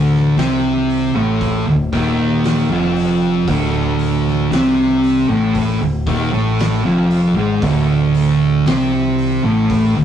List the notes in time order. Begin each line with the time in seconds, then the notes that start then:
Already playing: D1 D2 D3
0.14 snare
0.37 C2 C3 C4, snare, open hi-hat
0.90 open hi-hat
1.15 A1 A2 A3
1.41 kick, open hi-hat
1.66 D1 D2
1.93 D#1 D#2 D#3, kick, open hi-hat
2.44 snare, open hi-hat
2.70 F1 F2 F3
2.96 open hi-hat
3.47 D1 D2 D3, kick, open hi-hat
3.99 open hi-hat
4.27 snare
4.51 C2 C3 C4, snare, open hi-hat
5.04 open hi-hat
5.28 A1 A2 A3
5.55 kick, open hi-hat
5.80 D1 D2
6.06 D#1 D#2 D#3, kick, open hi-hat
6.33 A1 A2 A3
6.59 snare, open hi-hat
6.84 F1 F2 F3
7.11 open hi-hat
7.36 G#1 G#2 G#3
7.62 D1 D2 D3, kick, open hi-hat
8.15 open hi-hat
8.66 C2 C3 C4, snare, open hi-hat
9.18 open hi-hat
9.44 A1 A2 A3
9.70 kick, open hi-hat
9.96 D1 D2